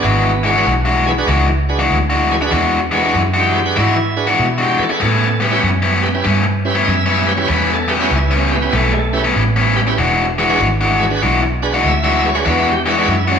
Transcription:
Already playing: B3
0.03 G#1 E3 G#3 D4 F#4
0.43 E3 G#3 D4 F#4 G#4 B4
0.54 E3 G#3 D4 F#4 G#4 B4
0.67 B1
0.85 E3 G#3 D4 F#4
1.06 G#4 B4
1.18 D4 F#4 G#4 B4
1.27 C#2 E3 G#3 D4 F#4
1.48 muted overdriven electric guitar stroke
1.69 D4 F#4 G#4 B4
1.79 E3 G#3 D4 F#4
1.91 D2
2.10 E3 G#3 D4 F#4
2.32 G#4 B4
2.41 D4 F#4 G#4 B4, muted overdriven electric guitar stroke
2.51 E2 E3 G#3 D4 F#4
2.91 E3 G#3 D4 F#4 G#4 B4
2.97 B4
3.03 E3 G#3 D4 F#4 G#4 B4
3.15 F#2
3.34 E3 G#3 D4 F#4
3.40 G4
3.54 G#4 B4
3.66 D4 F#4 G#4 B4
3.76 G#2 E3 G#3 D4 E4 F#4
3.96 muted overdriven electric guitar stroke
4.17 D4 F#4 G#4 B4
4.27 E3 G#3 D4 F#4
4.40 B2
4.58 E3 G#3 D4 F#4
4.62 G4
4.79 G#4 B4, muted fingered electric bass stroke
4.84 A4
4.89 D4 F#4 G#4 B4, muted overdriven electric guitar stroke
5.00 A2 G3 B3 C#4
5.40 A2 G3 B3 C#4 G4 B4
5.51 A2 G3 B3 C#4 E4 G4 B4
5.63 F#2
5.82 A2 G3 B3 C#4
6.03 G4 B4
6.14 C#4 E4 G4 B4
6.24 G2 A2 G3 B3 C#4
6.44 muted overdriven electric guitar stroke
6.65 C#4 E4 G4 B4
6.75 A2 G3 B3 C#4
6.85 F#2 D#5
6.89 E5
7.06 A2 G3 B3 C#4
7.27 G4 B4
7.31 C#5
7.38 C#4 E4 G4 B4, muted overdriven electric guitar stroke
7.48 E2 A2 G3 B3 C#4
7.53 B4
7.74 A4
7.88 A2 G3 B3 C#4 G4 B4
7.95 F#4
8.00 A2 G3 B3 C#4 E4 G4 B4
8.11 C#2
8.16 E4
8.31 A2 G3 B3 C#4
8.36 C#4
8.51 G4 B4
8.57 B3
8.62 C#4 E4 G4 B4
8.73 B1 A2 G3 A3 B3 C#4
8.93 G#3, muted overdriven electric guitar stroke
8.99 A3
9.13 C#4 E4 G4 B4
9.24 A2 G3 B3 C#4
9.36 A1
9.56 A2 G3 B3 C#4
9.76 G4 B4
9.87 C#4 E4 G4 B4, muted overdriven electric guitar stroke
9.98 E1 E3 G#3 D4 F#4
10.38 E3 G#3 D4 F#4 G#4 B4
10.49 E3 G#3 D4 F#4 G#4 B4
10.60 G#1
10.81 E3 G#3 D4 F#4
10.99 G#4 B4
11.10 D4 F#4 G#4 B4
11.23 B1 E3 G#3 D4 F#4
11.42 muted overdriven electric guitar stroke
11.62 D4 F#4 G#4 B4
11.74 E3 G#3 D4 F#4
11.83 D2 D#5
11.87 E5
12.04 E3 G#3 D4 F#4
12.25 G#4 B4
12.29 C#5
12.34 D4 F#4 G#4 B4, muted overdriven electric guitar stroke
12.45 E2 E3 G#3 D4 F#4
12.49 B4
12.71 G4
12.86 E3 G#3 D4 F#4 G#4 B4
12.90 F#4
12.97 E3 G#3 D4 F#4 G#4 B4
13.08 F#2 E4
13.28 E3 G#3 C#4 D4 F#4

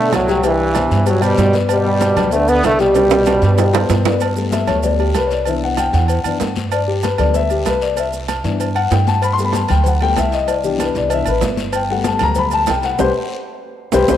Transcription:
Already playing: D3 A3 B3 B4
0.00 D5
0.12 C2 A2 F#3, cowbell, high conga, low timbale, low agogo, short guiro, maracas
0.28 G3 G4 G5, cowbell, high conga, short guiro, maracas
0.43 G2 E3 G3 G4 G5, cowbell, high conga, low agogo, long guiro, maracas
0.60 high conga
0.75 B2 B4 C5, cowbell, high conga, low timbale, low agogo, short guiro, maracas
0.91 G2, cowbell, high conga, short guiro, maracas
1.06 B2 F#3 G3 G4 G5, cowbell, high conga, low agogo, long guiro, maracas
1.20 B2 G3 B4 C5, high conga, low agogo, maracas
1.37 G2, cowbell, high conga, low timbale, short guiro, maracas
1.53 B3 B4 D5, cowbell, high conga, short guiro, maracas
1.69 B2 G3, cowbell, high conga, low agogo, long guiro, maracas
1.84 G3 G4 G5, high conga
2.01 cowbell, high conga, low timbale, low agogo, short guiro, maracas
2.17 D2 B3 B4 D5, cowbell, low conga, low agogo, short guiro, maracas
2.31 D3 A3, cowbell, high conga, long guiro, maracas
2.48 D3 B3 B4 D5, high conga, low agogo, maracas
2.63 C2 D3 A3, cowbell, high conga, low timbale, low agogo, short guiro, maracas
2.79 B2 G3 G4 G5, cowbell, high conga, short guiro, maracas
2.94 G3 G4 G5, cowbell, high conga, high timbale, low agogo, long guiro, maracas
3.10 high conga, high timbale, maracas
3.26 B2 B4 C5, cowbell, high conga, high timbale, low agogo, short guiro, maracas
3.42 G2, cowbell, high conga, short guiro, maracas
3.58 G3 G4 G5, cowbell, high conga, low timbale, low agogo, long guiro, maracas
3.73 B2 B4 C5, high bongo, high conga, low timbale, low agogo, maracas
3.89 G2, cowbell, high conga, low timbale, short guiro, maracas
4.05 B3 B4 D5, cowbell, low bongo, high conga, low timbale, short guiro, maracas
4.20 cowbell, high conga, low agogo, long guiro, maracas
4.36 G3 A3 B3, high conga, maracas
4.51 E5, cowbell, high conga, low timbale, low agogo, short guiro, maracas
4.67 D2 C#5, cowbell, low conga, low agogo, short guiro, maracas
4.79 G3 A3 C#5
4.83 B3 D5, cowbell, high conga, low conga, long guiro, maracas
4.99 G4, high conga, low agogo
5.15 C2 B4, cowbell, high conga, low timbale, low agogo, short guiro, maracas
5.27 C#5, short guiro, maracas
5.31 D5, cowbell, high conga
5.45 E3 B3 D4 E5, cowbell, high conga, low agogo, long guiro, maracas
5.63 F#5, high conga
5.77 G5, cowbell, high conga, low timbale, low agogo, short guiro, maracas
5.93 E2 F#5, cowbell, high conga, short guiro, maracas
6.08 cowbell, high conga, low agogo, long guiro, maracas
6.24 F#2 E3 B3 D4, high conga, low agogo, maracas
6.40 G2, cowbell, high conga, low timbale, short guiro, maracas
6.56 cowbell, high conga, short guiro, maracas
6.72 D5, cowbell, high conga, low agogo, long guiro, maracas
6.88 G4, high conga
7.03 B4, cowbell, high conga, low timbale, low agogo, short guiro, maracas
7.18 D2 G3 A3 B3 D5, cowbell, low conga, low agogo, short guiro, maracas
7.34 E5, cowbell, high conga, long guiro, maracas
7.50 G4, high conga, low agogo, maracas
7.66 C2 B4, cowbell, high conga, low timbale, low agogo, short guiro, maracas
7.82 D5, cowbell, high conga, short guiro, maracas
7.97 E5, cowbell, high conga, low agogo, long guiro, maracas
8.13 high conga, maracas
8.28 cowbell, high conga, low timbale, low agogo, short guiro, maracas
8.44 G2 E3 B3 D4, cowbell, high conga, short guiro, maracas
8.60 cowbell, high conga, low agogo, long guiro, maracas
8.75 F#5, high conga, low agogo
8.91 G2 G5, cowbell, high conga, low timbale, short guiro, maracas
9.07 A5, cowbell, high conga, short guiro, maracas
9.22 B5, cowbell, high conga, low agogo, long guiro, maracas
9.33 C6
9.38 G3 A3 B3, high conga, maracas
9.44 B5
9.53 A5, cowbell, high conga, low timbale, low agogo, short guiro, maracas
9.68 D2 G5, cowbell, low conga, low agogo, short guiro, maracas
9.84 F#5, cowbell, high conga, low conga, long guiro, maracas
10.01 G3 A3 B3 G5, high conga, low agogo
10.16 C2 E5, cowbell, high conga, low timbale, low agogo, short guiro, maracas
10.32 D#5, cowbell, high conga, short guiro, maracas
10.48 D5, cowbell, high conga, low agogo, long guiro, maracas
10.64 E3 B3 D4 G4, high conga, maracas
10.79 B4, cowbell, high conga, low timbale, low agogo, short guiro, maracas
10.95 C2 D5, cowbell, high conga, short guiro, maracas
11.08 D#5, cowbell, high conga, low agogo, long guiro, maracas
11.12 E3 B3 D4 E5
11.26 A1 B4, high conga, low agogo, maracas
11.41 G1, cowbell, high conga, low timbale, short guiro, maracas
11.57 cowbell, high conga, short guiro, maracas
11.73 G5, cowbell, high conga, low agogo, long guiro, maracas
11.89 G3 A3 B3 F#5, high conga
12.04 A5, cowbell, high conga, low timbale, low agogo, short guiro, maracas
12.19 D2 A#5, cowbell, low conga, low agogo, short guiro, maracas
12.35 B5, cowbell, high conga, low conga, long guiro, maracas
12.51 A5, high conga, low agogo, maracas
12.67 C2 G5, cowbell, high conga, low timbale, low agogo, short guiro, maracas
12.83 F#5, cowbell, high conga, short guiro, maracas
12.99 C2 G4 B4 C5, cowbell, high conga, high timbale, long guiro, maracas
13.92 C2 G4 B4 C5, cowbell, high conga, high timbale, long guiro, maracas
14.08 C2 G4 B4 C5, cowbell, high conga, high timbale, long guiro, maracas

